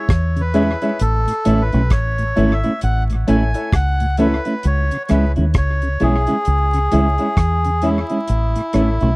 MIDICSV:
0, 0, Header, 1, 7, 480
1, 0, Start_track
1, 0, Key_signature, 4, "minor"
1, 0, Tempo, 910194
1, 526, Time_signature, 4, 2, 24, 8
1, 4830, End_track
2, 0, Start_track
2, 0, Title_t, "Melodica"
2, 0, Program_c, 0, 22
2, 0, Note_on_c, 0, 73, 79
2, 214, Note_on_c, 0, 71, 92
2, 218, Note_off_c, 0, 73, 0
2, 535, Note_on_c, 0, 69, 103
2, 539, Note_off_c, 0, 71, 0
2, 853, Note_on_c, 0, 71, 103
2, 860, Note_off_c, 0, 69, 0
2, 1012, Note_on_c, 0, 73, 101
2, 1014, Note_off_c, 0, 71, 0
2, 1334, Note_on_c, 0, 76, 98
2, 1338, Note_off_c, 0, 73, 0
2, 1479, Note_off_c, 0, 76, 0
2, 1495, Note_on_c, 0, 78, 101
2, 1601, Note_off_c, 0, 78, 0
2, 1734, Note_on_c, 0, 80, 95
2, 1977, Note_off_c, 0, 80, 0
2, 1978, Note_on_c, 0, 78, 109
2, 2195, Note_off_c, 0, 78, 0
2, 2220, Note_on_c, 0, 71, 100
2, 2460, Note_off_c, 0, 71, 0
2, 2461, Note_on_c, 0, 73, 105
2, 2650, Note_off_c, 0, 73, 0
2, 2669, Note_on_c, 0, 73, 70
2, 2692, Note_off_c, 0, 73, 0
2, 2701, Note_on_c, 0, 71, 92
2, 2806, Note_off_c, 0, 71, 0
2, 2940, Note_on_c, 0, 73, 98
2, 3178, Note_on_c, 0, 68, 109
2, 3180, Note_off_c, 0, 73, 0
2, 4139, Note_on_c, 0, 64, 89
2, 4161, Note_off_c, 0, 68, 0
2, 4830, Note_off_c, 0, 64, 0
2, 4830, End_track
3, 0, Start_track
3, 0, Title_t, "Upright piano"
3, 0, Program_c, 1, 0
3, 283, Note_on_c, 1, 64, 93
3, 285, Note_on_c, 1, 68, 91
3, 288, Note_on_c, 1, 73, 87
3, 291, Note_on_c, 1, 76, 108
3, 386, Note_off_c, 1, 64, 0
3, 387, Note_off_c, 1, 68, 0
3, 389, Note_off_c, 1, 73, 0
3, 390, Note_off_c, 1, 76, 0
3, 430, Note_on_c, 1, 64, 74
3, 431, Note_on_c, 1, 68, 73
3, 433, Note_on_c, 1, 73, 72
3, 435, Note_on_c, 1, 76, 91
3, 497, Note_off_c, 1, 64, 0
3, 498, Note_off_c, 1, 68, 0
3, 499, Note_off_c, 1, 73, 0
3, 500, Note_off_c, 1, 76, 0
3, 764, Note_on_c, 1, 64, 83
3, 766, Note_on_c, 1, 69, 84
3, 768, Note_on_c, 1, 73, 83
3, 772, Note_on_c, 1, 76, 100
3, 866, Note_off_c, 1, 64, 0
3, 868, Note_off_c, 1, 69, 0
3, 869, Note_off_c, 1, 73, 0
3, 870, Note_off_c, 1, 76, 0
3, 1243, Note_on_c, 1, 64, 94
3, 1245, Note_on_c, 1, 69, 86
3, 1247, Note_on_c, 1, 73, 86
3, 1250, Note_on_c, 1, 76, 105
3, 1346, Note_off_c, 1, 64, 0
3, 1347, Note_off_c, 1, 69, 0
3, 1348, Note_off_c, 1, 73, 0
3, 1350, Note_off_c, 1, 76, 0
3, 1390, Note_on_c, 1, 73, 25
3, 1391, Note_on_c, 1, 76, 28
3, 1428, Note_off_c, 1, 73, 0
3, 1429, Note_off_c, 1, 76, 0
3, 1724, Note_on_c, 1, 64, 80
3, 1725, Note_on_c, 1, 69, 74
3, 1727, Note_on_c, 1, 73, 84
3, 1729, Note_on_c, 1, 76, 93
3, 1827, Note_off_c, 1, 64, 0
3, 1827, Note_off_c, 1, 69, 0
3, 1828, Note_off_c, 1, 73, 0
3, 1829, Note_off_c, 1, 76, 0
3, 1868, Note_on_c, 1, 64, 76
3, 1871, Note_on_c, 1, 69, 70
3, 1874, Note_on_c, 1, 73, 64
3, 1875, Note_on_c, 1, 76, 75
3, 1937, Note_off_c, 1, 64, 0
3, 1938, Note_off_c, 1, 69, 0
3, 1939, Note_off_c, 1, 73, 0
3, 1940, Note_off_c, 1, 76, 0
3, 2204, Note_on_c, 1, 64, 101
3, 2207, Note_on_c, 1, 69, 87
3, 2209, Note_on_c, 1, 73, 86
3, 2211, Note_on_c, 1, 76, 102
3, 2307, Note_off_c, 1, 64, 0
3, 2308, Note_off_c, 1, 69, 0
3, 2309, Note_off_c, 1, 73, 0
3, 2310, Note_off_c, 1, 76, 0
3, 2685, Note_on_c, 1, 64, 86
3, 2686, Note_on_c, 1, 68, 68
3, 2689, Note_on_c, 1, 73, 86
3, 2691, Note_on_c, 1, 76, 100
3, 2787, Note_off_c, 1, 64, 0
3, 2788, Note_off_c, 1, 68, 0
3, 2789, Note_off_c, 1, 73, 0
3, 2790, Note_off_c, 1, 76, 0
3, 3167, Note_on_c, 1, 64, 86
3, 3168, Note_on_c, 1, 68, 84
3, 3170, Note_on_c, 1, 73, 85
3, 3172, Note_on_c, 1, 76, 97
3, 3268, Note_off_c, 1, 64, 0
3, 3269, Note_off_c, 1, 68, 0
3, 3270, Note_off_c, 1, 73, 0
3, 3271, Note_off_c, 1, 76, 0
3, 3647, Note_on_c, 1, 64, 76
3, 3649, Note_on_c, 1, 68, 75
3, 3651, Note_on_c, 1, 73, 72
3, 3653, Note_on_c, 1, 76, 84
3, 3748, Note_off_c, 1, 64, 0
3, 3750, Note_off_c, 1, 68, 0
3, 3750, Note_off_c, 1, 73, 0
3, 3751, Note_off_c, 1, 76, 0
3, 3792, Note_on_c, 1, 64, 67
3, 3793, Note_on_c, 1, 68, 62
3, 3796, Note_on_c, 1, 73, 66
3, 3798, Note_on_c, 1, 76, 76
3, 3859, Note_off_c, 1, 64, 0
3, 3859, Note_off_c, 1, 68, 0
3, 3861, Note_off_c, 1, 73, 0
3, 3862, Note_off_c, 1, 76, 0
3, 4127, Note_on_c, 1, 64, 94
3, 4130, Note_on_c, 1, 68, 86
3, 4131, Note_on_c, 1, 73, 85
3, 4134, Note_on_c, 1, 76, 98
3, 4229, Note_off_c, 1, 64, 0
3, 4230, Note_off_c, 1, 68, 0
3, 4231, Note_off_c, 1, 73, 0
3, 4232, Note_off_c, 1, 76, 0
3, 4607, Note_on_c, 1, 64, 92
3, 4609, Note_on_c, 1, 69, 81
3, 4612, Note_on_c, 1, 73, 81
3, 4615, Note_on_c, 1, 76, 89
3, 4709, Note_off_c, 1, 64, 0
3, 4710, Note_off_c, 1, 69, 0
3, 4711, Note_off_c, 1, 73, 0
3, 4712, Note_off_c, 1, 76, 0
3, 4830, End_track
4, 0, Start_track
4, 0, Title_t, "Clean electric guitar"
4, 0, Program_c, 2, 27
4, 286, Note_on_c, 2, 56, 79
4, 291, Note_on_c, 2, 61, 84
4, 294, Note_on_c, 2, 64, 92
4, 361, Note_off_c, 2, 56, 0
4, 363, Note_off_c, 2, 61, 0
4, 365, Note_off_c, 2, 64, 0
4, 432, Note_on_c, 2, 64, 62
4, 435, Note_on_c, 2, 61, 55
4, 440, Note_on_c, 2, 56, 52
4, 470, Note_off_c, 2, 64, 0
4, 472, Note_off_c, 2, 61, 0
4, 474, Note_off_c, 2, 56, 0
4, 767, Note_on_c, 2, 57, 86
4, 771, Note_on_c, 2, 61, 79
4, 776, Note_on_c, 2, 64, 101
4, 842, Note_off_c, 2, 57, 0
4, 844, Note_off_c, 2, 61, 0
4, 846, Note_off_c, 2, 64, 0
4, 912, Note_on_c, 2, 64, 62
4, 917, Note_on_c, 2, 61, 64
4, 921, Note_on_c, 2, 57, 51
4, 950, Note_off_c, 2, 64, 0
4, 953, Note_off_c, 2, 61, 0
4, 955, Note_off_c, 2, 57, 0
4, 1247, Note_on_c, 2, 57, 87
4, 1252, Note_on_c, 2, 61, 87
4, 1255, Note_on_c, 2, 64, 85
4, 1322, Note_off_c, 2, 57, 0
4, 1324, Note_off_c, 2, 61, 0
4, 1325, Note_off_c, 2, 64, 0
4, 1392, Note_on_c, 2, 64, 64
4, 1397, Note_on_c, 2, 61, 58
4, 1401, Note_on_c, 2, 57, 47
4, 1430, Note_off_c, 2, 64, 0
4, 1433, Note_off_c, 2, 61, 0
4, 1434, Note_off_c, 2, 57, 0
4, 1727, Note_on_c, 2, 57, 79
4, 1731, Note_on_c, 2, 61, 91
4, 1735, Note_on_c, 2, 64, 92
4, 1801, Note_off_c, 2, 57, 0
4, 1804, Note_off_c, 2, 61, 0
4, 1805, Note_off_c, 2, 64, 0
4, 2206, Note_on_c, 2, 57, 77
4, 2212, Note_on_c, 2, 61, 102
4, 2215, Note_on_c, 2, 64, 83
4, 2281, Note_off_c, 2, 57, 0
4, 2284, Note_off_c, 2, 61, 0
4, 2286, Note_off_c, 2, 64, 0
4, 2351, Note_on_c, 2, 64, 66
4, 2355, Note_on_c, 2, 61, 55
4, 2359, Note_on_c, 2, 57, 49
4, 2389, Note_off_c, 2, 64, 0
4, 2392, Note_off_c, 2, 61, 0
4, 2393, Note_off_c, 2, 57, 0
4, 2685, Note_on_c, 2, 56, 87
4, 2688, Note_on_c, 2, 61, 88
4, 2692, Note_on_c, 2, 64, 85
4, 2761, Note_off_c, 2, 56, 0
4, 2762, Note_off_c, 2, 61, 0
4, 2764, Note_off_c, 2, 64, 0
4, 2829, Note_on_c, 2, 64, 58
4, 2833, Note_on_c, 2, 61, 52
4, 2838, Note_on_c, 2, 56, 45
4, 2868, Note_off_c, 2, 64, 0
4, 2871, Note_off_c, 2, 61, 0
4, 2873, Note_off_c, 2, 56, 0
4, 3165, Note_on_c, 2, 56, 74
4, 3170, Note_on_c, 2, 61, 73
4, 3174, Note_on_c, 2, 64, 88
4, 3241, Note_off_c, 2, 56, 0
4, 3243, Note_off_c, 2, 61, 0
4, 3245, Note_off_c, 2, 64, 0
4, 3310, Note_on_c, 2, 64, 68
4, 3314, Note_on_c, 2, 61, 57
4, 3318, Note_on_c, 2, 56, 58
4, 3349, Note_off_c, 2, 64, 0
4, 3351, Note_off_c, 2, 61, 0
4, 3353, Note_off_c, 2, 56, 0
4, 3648, Note_on_c, 2, 56, 80
4, 3652, Note_on_c, 2, 61, 82
4, 3655, Note_on_c, 2, 64, 92
4, 3722, Note_off_c, 2, 56, 0
4, 3724, Note_off_c, 2, 61, 0
4, 3726, Note_off_c, 2, 64, 0
4, 3790, Note_on_c, 2, 64, 56
4, 3796, Note_on_c, 2, 61, 48
4, 3799, Note_on_c, 2, 56, 46
4, 3829, Note_off_c, 2, 64, 0
4, 3832, Note_off_c, 2, 61, 0
4, 3834, Note_off_c, 2, 56, 0
4, 4126, Note_on_c, 2, 56, 79
4, 4130, Note_on_c, 2, 61, 74
4, 4134, Note_on_c, 2, 64, 84
4, 4201, Note_off_c, 2, 56, 0
4, 4204, Note_off_c, 2, 61, 0
4, 4205, Note_off_c, 2, 64, 0
4, 4273, Note_on_c, 2, 64, 60
4, 4277, Note_on_c, 2, 61, 54
4, 4280, Note_on_c, 2, 56, 45
4, 4311, Note_off_c, 2, 64, 0
4, 4313, Note_off_c, 2, 61, 0
4, 4314, Note_off_c, 2, 56, 0
4, 4607, Note_on_c, 2, 57, 88
4, 4612, Note_on_c, 2, 61, 83
4, 4617, Note_on_c, 2, 64, 96
4, 4682, Note_off_c, 2, 57, 0
4, 4684, Note_off_c, 2, 61, 0
4, 4687, Note_off_c, 2, 64, 0
4, 4752, Note_on_c, 2, 64, 65
4, 4757, Note_on_c, 2, 61, 59
4, 4760, Note_on_c, 2, 57, 57
4, 4790, Note_off_c, 2, 64, 0
4, 4793, Note_off_c, 2, 61, 0
4, 4795, Note_off_c, 2, 57, 0
4, 4830, End_track
5, 0, Start_track
5, 0, Title_t, "Tonewheel organ"
5, 0, Program_c, 3, 16
5, 191, Note_on_c, 3, 49, 64
5, 221, Note_off_c, 3, 49, 0
5, 286, Note_on_c, 3, 52, 82
5, 288, Note_on_c, 3, 56, 74
5, 289, Note_on_c, 3, 61, 97
5, 332, Note_off_c, 3, 52, 0
5, 333, Note_off_c, 3, 56, 0
5, 333, Note_off_c, 3, 61, 0
5, 670, Note_on_c, 3, 45, 54
5, 701, Note_off_c, 3, 45, 0
5, 765, Note_on_c, 3, 52, 75
5, 767, Note_on_c, 3, 57, 67
5, 768, Note_on_c, 3, 61, 85
5, 812, Note_off_c, 3, 52, 0
5, 812, Note_off_c, 3, 57, 0
5, 813, Note_off_c, 3, 61, 0
5, 912, Note_on_c, 3, 45, 56
5, 941, Note_off_c, 3, 45, 0
5, 1152, Note_on_c, 3, 45, 56
5, 1182, Note_off_c, 3, 45, 0
5, 1248, Note_on_c, 3, 52, 76
5, 1249, Note_on_c, 3, 57, 67
5, 1251, Note_on_c, 3, 61, 76
5, 1293, Note_off_c, 3, 52, 0
5, 1294, Note_off_c, 3, 57, 0
5, 1294, Note_off_c, 3, 61, 0
5, 1394, Note_on_c, 3, 45, 64
5, 1423, Note_off_c, 3, 45, 0
5, 1635, Note_on_c, 3, 45, 63
5, 1663, Note_off_c, 3, 45, 0
5, 1728, Note_on_c, 3, 52, 74
5, 1730, Note_on_c, 3, 57, 72
5, 1732, Note_on_c, 3, 61, 83
5, 1773, Note_off_c, 3, 52, 0
5, 1774, Note_off_c, 3, 57, 0
5, 1775, Note_off_c, 3, 61, 0
5, 2113, Note_on_c, 3, 45, 59
5, 2142, Note_off_c, 3, 45, 0
5, 2209, Note_on_c, 3, 52, 82
5, 2211, Note_on_c, 3, 57, 76
5, 2212, Note_on_c, 3, 61, 90
5, 2254, Note_off_c, 3, 52, 0
5, 2254, Note_off_c, 3, 57, 0
5, 2255, Note_off_c, 3, 61, 0
5, 2594, Note_on_c, 3, 49, 55
5, 2623, Note_off_c, 3, 49, 0
5, 2689, Note_on_c, 3, 52, 72
5, 2690, Note_on_c, 3, 56, 72
5, 2691, Note_on_c, 3, 61, 80
5, 2733, Note_off_c, 3, 52, 0
5, 2734, Note_off_c, 3, 56, 0
5, 2734, Note_off_c, 3, 61, 0
5, 2834, Note_on_c, 3, 49, 50
5, 2863, Note_off_c, 3, 49, 0
5, 3074, Note_on_c, 3, 49, 59
5, 3102, Note_off_c, 3, 49, 0
5, 3167, Note_on_c, 3, 52, 72
5, 3169, Note_on_c, 3, 56, 68
5, 3170, Note_on_c, 3, 61, 82
5, 3213, Note_off_c, 3, 52, 0
5, 3213, Note_off_c, 3, 56, 0
5, 3214, Note_off_c, 3, 61, 0
5, 3314, Note_on_c, 3, 49, 59
5, 3342, Note_off_c, 3, 49, 0
5, 3554, Note_on_c, 3, 49, 65
5, 3583, Note_off_c, 3, 49, 0
5, 3647, Note_on_c, 3, 52, 77
5, 3649, Note_on_c, 3, 56, 67
5, 3650, Note_on_c, 3, 61, 81
5, 3693, Note_off_c, 3, 52, 0
5, 3693, Note_off_c, 3, 56, 0
5, 3694, Note_off_c, 3, 61, 0
5, 4034, Note_on_c, 3, 49, 59
5, 4063, Note_off_c, 3, 49, 0
5, 4127, Note_on_c, 3, 52, 77
5, 4130, Note_on_c, 3, 56, 75
5, 4131, Note_on_c, 3, 61, 88
5, 4173, Note_off_c, 3, 52, 0
5, 4174, Note_off_c, 3, 56, 0
5, 4175, Note_off_c, 3, 61, 0
5, 4514, Note_on_c, 3, 45, 52
5, 4543, Note_off_c, 3, 45, 0
5, 4607, Note_on_c, 3, 52, 69
5, 4608, Note_on_c, 3, 57, 71
5, 4610, Note_on_c, 3, 61, 79
5, 4653, Note_off_c, 3, 52, 0
5, 4653, Note_off_c, 3, 57, 0
5, 4654, Note_off_c, 3, 61, 0
5, 4754, Note_on_c, 3, 45, 58
5, 4783, Note_off_c, 3, 45, 0
5, 4830, End_track
6, 0, Start_track
6, 0, Title_t, "Fingered electric bass"
6, 0, Program_c, 4, 33
6, 50, Note_on_c, 4, 40, 80
6, 392, Note_off_c, 4, 40, 0
6, 533, Note_on_c, 4, 33, 94
6, 659, Note_off_c, 4, 33, 0
6, 773, Note_on_c, 4, 33, 76
6, 899, Note_off_c, 4, 33, 0
6, 918, Note_on_c, 4, 35, 105
6, 1010, Note_off_c, 4, 35, 0
6, 1010, Note_on_c, 4, 33, 79
6, 1223, Note_off_c, 4, 33, 0
6, 1254, Note_on_c, 4, 32, 94
6, 1380, Note_off_c, 4, 32, 0
6, 1494, Note_on_c, 4, 33, 95
6, 1705, Note_off_c, 4, 33, 0
6, 1735, Note_on_c, 4, 33, 89
6, 1860, Note_off_c, 4, 33, 0
6, 1968, Note_on_c, 4, 37, 76
6, 2311, Note_off_c, 4, 37, 0
6, 2453, Note_on_c, 4, 37, 94
6, 2579, Note_off_c, 4, 37, 0
6, 2694, Note_on_c, 4, 37, 84
6, 2820, Note_off_c, 4, 37, 0
6, 2836, Note_on_c, 4, 39, 89
6, 2919, Note_off_c, 4, 39, 0
6, 2928, Note_on_c, 4, 37, 68
6, 3143, Note_off_c, 4, 37, 0
6, 3175, Note_on_c, 4, 35, 86
6, 3300, Note_off_c, 4, 35, 0
6, 3414, Note_on_c, 4, 37, 89
6, 3626, Note_off_c, 4, 37, 0
6, 3656, Note_on_c, 4, 37, 93
6, 3781, Note_off_c, 4, 37, 0
6, 3890, Note_on_c, 4, 40, 89
6, 4233, Note_off_c, 4, 40, 0
6, 4374, Note_on_c, 4, 33, 93
6, 4500, Note_off_c, 4, 33, 0
6, 4612, Note_on_c, 4, 33, 77
6, 4739, Note_off_c, 4, 33, 0
6, 4759, Note_on_c, 4, 35, 92
6, 4830, Note_off_c, 4, 35, 0
6, 4830, End_track
7, 0, Start_track
7, 0, Title_t, "Drums"
7, 46, Note_on_c, 9, 36, 123
7, 52, Note_on_c, 9, 42, 97
7, 53, Note_on_c, 9, 37, 117
7, 99, Note_off_c, 9, 36, 0
7, 105, Note_off_c, 9, 42, 0
7, 106, Note_off_c, 9, 37, 0
7, 192, Note_on_c, 9, 42, 60
7, 245, Note_off_c, 9, 42, 0
7, 284, Note_on_c, 9, 42, 80
7, 337, Note_off_c, 9, 42, 0
7, 430, Note_on_c, 9, 42, 46
7, 483, Note_off_c, 9, 42, 0
7, 525, Note_on_c, 9, 42, 106
7, 577, Note_off_c, 9, 42, 0
7, 674, Note_on_c, 9, 42, 58
7, 727, Note_off_c, 9, 42, 0
7, 766, Note_on_c, 9, 42, 87
7, 818, Note_off_c, 9, 42, 0
7, 910, Note_on_c, 9, 42, 43
7, 963, Note_off_c, 9, 42, 0
7, 1003, Note_on_c, 9, 42, 90
7, 1006, Note_on_c, 9, 36, 117
7, 1009, Note_on_c, 9, 37, 114
7, 1056, Note_off_c, 9, 42, 0
7, 1058, Note_off_c, 9, 36, 0
7, 1062, Note_off_c, 9, 37, 0
7, 1151, Note_on_c, 9, 42, 50
7, 1204, Note_off_c, 9, 42, 0
7, 1248, Note_on_c, 9, 42, 78
7, 1301, Note_off_c, 9, 42, 0
7, 1390, Note_on_c, 9, 42, 48
7, 1443, Note_off_c, 9, 42, 0
7, 1484, Note_on_c, 9, 42, 83
7, 1536, Note_off_c, 9, 42, 0
7, 1633, Note_on_c, 9, 42, 50
7, 1686, Note_off_c, 9, 42, 0
7, 1728, Note_on_c, 9, 42, 80
7, 1781, Note_off_c, 9, 42, 0
7, 1868, Note_on_c, 9, 42, 52
7, 1921, Note_off_c, 9, 42, 0
7, 1964, Note_on_c, 9, 36, 106
7, 1968, Note_on_c, 9, 42, 95
7, 1969, Note_on_c, 9, 37, 119
7, 2017, Note_off_c, 9, 36, 0
7, 2021, Note_off_c, 9, 42, 0
7, 2022, Note_off_c, 9, 37, 0
7, 2110, Note_on_c, 9, 42, 58
7, 2163, Note_off_c, 9, 42, 0
7, 2201, Note_on_c, 9, 42, 83
7, 2253, Note_off_c, 9, 42, 0
7, 2347, Note_on_c, 9, 42, 50
7, 2400, Note_off_c, 9, 42, 0
7, 2443, Note_on_c, 9, 42, 91
7, 2495, Note_off_c, 9, 42, 0
7, 2591, Note_on_c, 9, 42, 53
7, 2643, Note_off_c, 9, 42, 0
7, 2682, Note_on_c, 9, 42, 67
7, 2688, Note_on_c, 9, 37, 62
7, 2735, Note_off_c, 9, 42, 0
7, 2741, Note_off_c, 9, 37, 0
7, 2827, Note_on_c, 9, 42, 38
7, 2879, Note_off_c, 9, 42, 0
7, 2921, Note_on_c, 9, 42, 84
7, 2925, Note_on_c, 9, 36, 115
7, 2926, Note_on_c, 9, 37, 107
7, 2973, Note_off_c, 9, 42, 0
7, 2978, Note_off_c, 9, 36, 0
7, 2979, Note_off_c, 9, 37, 0
7, 3068, Note_on_c, 9, 42, 52
7, 3121, Note_off_c, 9, 42, 0
7, 3164, Note_on_c, 9, 42, 71
7, 3217, Note_off_c, 9, 42, 0
7, 3305, Note_on_c, 9, 42, 54
7, 3358, Note_off_c, 9, 42, 0
7, 3401, Note_on_c, 9, 42, 90
7, 3454, Note_off_c, 9, 42, 0
7, 3551, Note_on_c, 9, 42, 45
7, 3604, Note_off_c, 9, 42, 0
7, 3647, Note_on_c, 9, 42, 79
7, 3700, Note_off_c, 9, 42, 0
7, 3787, Note_on_c, 9, 42, 47
7, 3840, Note_off_c, 9, 42, 0
7, 3886, Note_on_c, 9, 36, 122
7, 3888, Note_on_c, 9, 42, 99
7, 3889, Note_on_c, 9, 37, 108
7, 3938, Note_off_c, 9, 36, 0
7, 3941, Note_off_c, 9, 42, 0
7, 3942, Note_off_c, 9, 37, 0
7, 4031, Note_on_c, 9, 42, 62
7, 4084, Note_off_c, 9, 42, 0
7, 4122, Note_on_c, 9, 42, 78
7, 4175, Note_off_c, 9, 42, 0
7, 4269, Note_on_c, 9, 42, 47
7, 4322, Note_off_c, 9, 42, 0
7, 4365, Note_on_c, 9, 42, 99
7, 4417, Note_off_c, 9, 42, 0
7, 4512, Note_on_c, 9, 42, 55
7, 4565, Note_off_c, 9, 42, 0
7, 4604, Note_on_c, 9, 42, 74
7, 4609, Note_on_c, 9, 37, 59
7, 4656, Note_off_c, 9, 42, 0
7, 4662, Note_off_c, 9, 37, 0
7, 4749, Note_on_c, 9, 42, 37
7, 4802, Note_off_c, 9, 42, 0
7, 4830, End_track
0, 0, End_of_file